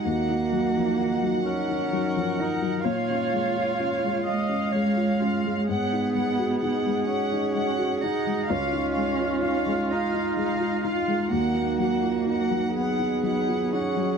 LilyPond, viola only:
\new Staff \with { instrumentName = "Viola" } { \time 6/8 \key ees \minor \tempo 4. = 42 ges'4. bes'4. | des''4. ees''8 des''8 f'8 | aes'2. | f'2. |
ges'4. aes'4. | }